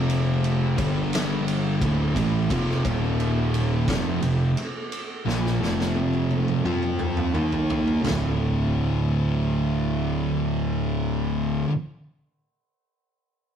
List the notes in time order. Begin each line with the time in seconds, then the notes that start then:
Already playing: F1 F2 C3 F3
0.10 ride
0.44 ride
0.77 G1 G2 D3 G3, kick, ride
1.13 snare, ride
1.48 ride
1.81 D1 D2 A2 D3, kick, ride
2.15 A1 A2 E3 A3, kick, ride
2.50 F1 F2 C3 F3, kick, ride
2.70 snare
2.85 D#1 D#2 A#2 D#3, kick, ride
3.20 ride
3.54 ride
3.88 F1 F2 C3 F3, kick, snare, ride
4.22 F1 F2 C3, ride
4.57 ride
4.92 ride
5.25 A#1 A#2 F3 A#3, snare
5.46 snare
5.61 F1 F2 C3 F3, snare
5.80 snare
5.96 high tom
6.13 high tom
6.31 high tom
6.48 mid tom
6.64 F2 F3 C4 F4, mid tom
6.82 mid tom
6.99 mid tom
7.17 mid tom
7.34 D#2 D#3 A#3 D#4, mid tom
7.52 floor tom
7.70 floor tom
7.87 floor tom
8.02 D1 D2 A2 D3, floor tom, splash
8.07 snare